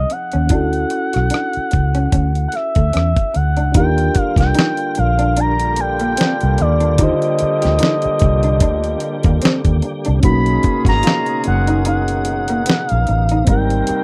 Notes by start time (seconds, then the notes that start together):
Already playing: F3 C4 D#4 G#4 D#5
0.10 F#5, muted clean electric guitar stroke, closed hi-hat
0.32 D#2 C#4, closed hi-hat
0.47 D2 C#4 D4 E4, kick, closed hi-hat
0.53 F#4 A4
0.73 closed hi-hat
0.90 muted clean electric guitar stroke, closed hi-hat
1.13 B1 F#4, cross-stick, closed hi-hat
1.30 D4, closed hi-hat
1.34 cross-stick
1.53 muted fingered electric bass stroke, closed hi-hat
1.71 C#2, muted clean electric guitar stroke, kick, closed hi-hat
1.95 C#4, closed hi-hat
2.12 D2 C#4, kick, closed hi-hat
2.35 closed hi-hat
2.48 F#5, closed hi-hat
2.54 E5, muted clean electric guitar stroke, cross-stick
2.75 D2 A3, kick, closed hi-hat
2.93 E2 C#4, cross-stick, closed hi-hat
3.16 kick, closed hi-hat
3.34 D2 F#5, muted clean electric guitar stroke, closed hi-hat
3.57 C#2 D4, closed hi-hat
3.72 D#2 D3 G3 A#3 D4 D#4 F4, kick, closed hi-hat
3.77 G4 A#4 G5
3.98 closed hi-hat
4.15 muted clean electric guitar stroke, kick, closed hi-hat
4.22 F5
4.36 C2 G4 G5, kick, closed hi-hat
4.41 snare
4.54 D#4, closed hi-hat
4.59 snare
4.77 closed hi-hat
4.95 A#1 F5, muted clean electric guitar stroke, closed hi-hat
5.19 D4, closed hi-hat
5.37 A#2 D3 G3 D4 A#5, closed hi-hat
5.60 closed hi-hat
5.76 G5, muted clean electric guitar stroke, closed hi-hat
5.99 A#3, closed hi-hat
6.17 C4, snare, closed hi-hat
6.41 C2, closed hi-hat
6.58 D#2 D5, muted clean electric guitar stroke, closed hi-hat
6.80 D4, closed hi-hat
6.96 D3 D#4 F4 G4, kick, closed hi-hat
7.01 G4 C5 D#5
7.22 closed hi-hat
7.39 muted clean electric guitar stroke, muted fingered electric bass stroke, closed hi-hat
7.62 D2 G4, snare, closed hi-hat
7.79 D#4, closed hi-hat
7.83 snare
8.02 muted fingered electric bass stroke, closed hi-hat
8.19 C2, muted clean electric guitar stroke, kick, closed hi-hat
8.43 D4, closed hi-hat
8.60 D2 D4, kick, closed hi-hat
8.84 closed hi-hat
9.00 muted clean electric guitar stroke, closed hi-hat
9.23 D#2 A#3, kick, closed hi-hat
9.42 C4, muted fingered electric bass stroke, snare, closed hi-hat
9.65 D#2, kick, closed hi-hat
9.82 muted clean electric guitar stroke, closed hi-hat
10.05 C2 D4, closed hi-hat
10.20 C#3 D#3 G#3 A#3 B3 C#4 D#4 G#4, kick, closed hi-hat
10.24 B1 B2 A#3 D#4 F#4 B5
10.46 closed hi-hat
10.63 muted clean electric guitar stroke, kick, closed hi-hat
10.85 G#1 F#4 A#5, kick, closed hi-hat
10.90 snare
11.03 F4, closed hi-hat
11.07 snare
11.26 closed hi-hat
11.44 F#1 F#5, muted clean electric guitar stroke, closed hi-hat
11.67 D#4, closed hi-hat
11.85 D#4 F#5, closed hi-hat
12.08 closed hi-hat
12.25 muted clean electric guitar stroke, closed hi-hat
12.48 A#3, closed hi-hat
12.66 B3, snare, closed hi-hat
12.89 A#1 F5, closed hi-hat
13.07 A1, muted clean electric guitar stroke, closed hi-hat
13.29 D#4, closed hi-hat
13.45 G#1 C3 D#3 G3 C4 D#4 A#4, kick, closed hi-hat
13.50 G3 A#4 G5
13.70 closed hi-hat
13.87 muted clean electric guitar stroke, muted fingered electric bass stroke, closed hi-hat